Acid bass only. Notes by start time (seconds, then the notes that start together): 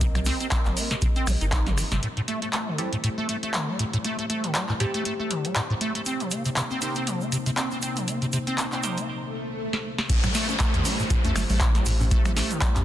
0.01 C3
0.15 C3
0.26 C4
0.40 C4
0.52 C4
0.66 F3
0.77 A#3
0.91 C3
1.02 C3
1.16 C4
1.27 D#3
1.41 D#4
1.52 D#4
1.67 C3
1.78 F3
1.92 C3
2.03 A2
2.17 A2
2.28 A3
2.42 A3
2.53 A3
2.67 D3
2.78 G3
2.93 A2
3.04 A2
3.18 A3
3.29 A3
3.43 A3
3.54 D3
3.68 G3
3.79 A2
3.93 A2
4.04 A3
4.19 A3
4.30 A3
4.44 D3
4.55 G3
4.69 A2
4.80 A2
4.94 A3
5.05 A3
5.19 A3
5.31 D3
5.45 G3
5.56 A2
5.70 A2
5.81 A3
5.95 A3
6.06 C4
6.20 F3
6.31 A#3
6.45 C3
6.57 C3
6.71 C4
6.82 C4
6.96 C4
7.07 F3
7.21 A#3
7.32 C3
7.46 C3
7.57 C4
7.71 C4
7.83 C4
7.97 F3
8.08 A#3
8.22 C3
8.33 C3
8.47 C4
8.72 C4
8.83 F3
8.98 A#3
10.09 A2
10.24 A2
10.35 A3
10.49 A3
10.60 A3
10.74 D3
10.85 G3
10.99 A2
11.10 A2
11.24 A3
11.36 A3
11.50 A3
11.61 D3
11.75 G3
11.86 A2
12.00 A2
12.11 A3
12.25 A3
12.36 A3
12.51 D3
12.62 G3
12.76 A2